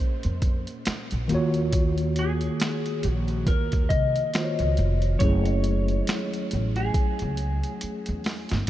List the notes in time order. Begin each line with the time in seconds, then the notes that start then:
Already playing: A#2 A#3 C#4 G#4 A#4 C5
0.23 F2, closed hi-hat
0.42 kick, closed hi-hat
0.67 closed hi-hat
0.85 finger snap, muted upright bass stroke, snare, closed hi-hat
1.11 A#1, closed hi-hat
1.28 D#2 D#3 A#3 F4, closed hi-hat
1.33 F#4 C#5
1.54 closed hi-hat
1.72 kick, closed hi-hat
1.98 closed hi-hat
2.16 G#4, closed hi-hat
2.41 closed hi-hat
2.60 finger snap, snare, closed hi-hat
2.86 closed hi-hat
3.03 A#1, closed hi-hat
3.09 F#4
3.28 closed hi-hat
3.47 D#2 A#4, kick, closed hi-hat
3.72 kick, closed hi-hat
3.89 C2 D#5, kick, closed hi-hat
4.16 closed hi-hat
4.34 D#3 A#3 F4 F#4, finger snap, snare, closed hi-hat
4.38 C5
4.44 C#5
4.59 C#2, closed hi-hat
4.77 F1, closed hi-hat
5.02 closed hi-hat
5.19 F#1 F#3 C#4 E4 C#5, kick, closed hi-hat
5.24 A3 G#4
5.46 closed hi-hat
5.64 closed hi-hat
5.88 closed hi-hat
6.07 finger snap, snare, closed hi-hat
6.33 closed hi-hat
6.51 A1, closed hi-hat
6.76 G#4, closed hi-hat
6.94 kick, closed hi-hat
7.19 C#2, closed hi-hat
7.37 closed hi-hat
7.63 closed hi-hat
7.81 muted upright bass stroke, closed hi-hat
8.06 E2, closed hi-hat
8.24 snare, open hi-hat
8.49 G1, snare, closed hi-hat